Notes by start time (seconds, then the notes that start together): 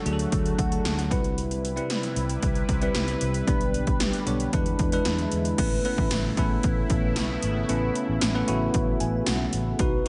Already playing: D3 F#3 A3 D4 F#4 A4
0.05 D2 F#3 A3 D4 G#4, closed hi-hat
0.13 A4
0.19 closed hi-hat
0.32 D2, kick, closed hi-hat
0.46 closed hi-hat
0.59 D2 F#5, kick, closed hi-hat
0.72 A5, closed hi-hat
0.85 D2, snare, closed hi-hat
0.98 F#5, closed hi-hat
1.10 C2 C3 G3 C4 E4 B4, kick, closed hi-hat
1.24 closed hi-hat
1.38 closed hi-hat
1.51 closed hi-hat
1.65 closed hi-hat
1.76 G3 C4 E4 B4, closed hi-hat
1.90 snare, closed hi-hat
2.03 closed hi-hat
2.16 C2, closed hi-hat
2.29 closed hi-hat
2.43 C2, kick, closed hi-hat
2.55 closed hi-hat
2.69 C2, kick, closed hi-hat
2.81 G3 C4 E4 B4, closed hi-hat
2.95 C2, snare, closed hi-hat
3.08 closed hi-hat
3.21 C2, closed hi-hat
3.34 closed hi-hat
3.47 B1 D3 G3 B3 D4 G4 B4, kick, closed hi-hat
3.61 closed hi-hat
3.74 closed hi-hat
3.87 kick, closed hi-hat
4.00 snare, closed hi-hat
4.13 closed hi-hat
4.26 B1 G3 B3 D4 C#5, closed hi-hat
4.40 closed hi-hat
4.53 E2 G#3 D4 E4 B4, kick, closed hi-hat
4.66 closed hi-hat
4.79 E2, kick, closed hi-hat
4.92 G#3 D4 E4 B4, closed hi-hat
5.05 E2, snare, closed hi-hat
5.19 closed hi-hat
5.32 E2, closed hi-hat
5.45 closed hi-hat
5.58 A1 C#3 A3 B3 C#4 E4 B4, kick, closed hi-hat, crash
5.84 A3 B3 C#4 E4 B4, closed hi-hat
5.98 A1, kick
6.11 A1, snare, closed hi-hat, tambourine
6.37 A1 A3 B3 C#4 E4 B4, kick, closed hi-hat
6.63 A1, kick, closed hi-hat
6.90 A1, kick, closed hi-hat
7.16 B1, snare, closed hi-hat, tambourine
7.42 G#1, closed hi-hat
7.69 A1 A3 B3 C#4 E4 B4, closed hi-hat
7.95 closed hi-hat
8.09 A1
8.21 A1, snare, closed hi-hat, tambourine
8.35 A3 B3 C#4 E4 B4
8.47 A1 A3 B3 C#4 E4 F#4, closed hi-hat
8.74 A1, kick, closed hi-hat
9.00 A1 G#5, closed hi-hat
9.26 B1 F#5, snare, closed hi-hat, tambourine
9.53 A1, closed hi-hat
9.79 B1 D#3 F#3 B3 D#4 F#4 B4, kick, closed hi-hat